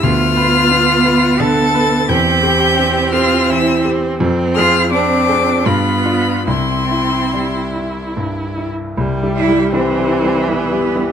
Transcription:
X:1
M:3/4
L:1/8
Q:1/4=83
K:C
V:1 name="Violin"
f'4 a'2 | g'3 f' e' z | z f' d'2 b2 | c'4 z2 |
z e c2 B2 |]
V:2 name="Cello"
F4 A2 | G3 F E z | z F D2 B,2 | C4 z2 |
z E C2 B,2 |]
V:3 name="Grand piano"
D,, B B, B D, B | E,, G C G E, G | F,, _A C A G,, [DF] | C,, E G, E G,, E |
(3C,, [G,EG] [G,EG] (3[G,EG] [G,EG] [G,EG] (3[G,EG] [G,EG] [G,EG] |]
V:4 name="Viola"
B,6 | C6 | C2 C2 F2 | E4- E z |
G,2 E,4 |]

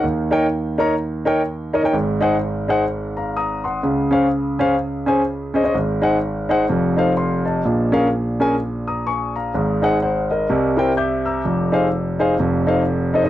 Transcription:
X:1
M:4/4
L:1/16
Q:"Swing" 1/4=126
K:Abmix
V:1 name="Grand piano"
z2 [EBd=g] z3 [EBdb] z3 [EBdg] z3 [EBde] [EBdg] | z2 [EAcg] z3 [EAcg] z3 [fb]2 [be']2 [gc']2- | [gc']2 [DAcf] z3 [DAcf] z3 [DAca] z3 [DAce] [DAce] | z2 [EAcg] z3 [EAcg] z3 [E=Acf] z [fc']2 [e=a]2- |
[e=a]2 [D_ABf] z3 [DAB_a] z3 [be']2 [ad']2 [fb]2- | [fb]2 [EAcg] z [cg]2 [Be]4 [=EBc=g] z [=e=d'=g']2 [b=e']2- | [b=e']2 [_EAcf] z3 [EAcf] z3 [E=Acf] z3 [EAce] [EAce] |]
V:2 name="Grand piano" clef=bass
[E,,E,]16 | [A,,,A,,]16 | [D,,D,]16 | [A,,,A,,]8 [F,,,F,,]8 |
[B,,,B,,]16 | [A,,,A,,]8 [C,,C,]8 | [F,,,F,,]8 [F,,,F,,]8 |]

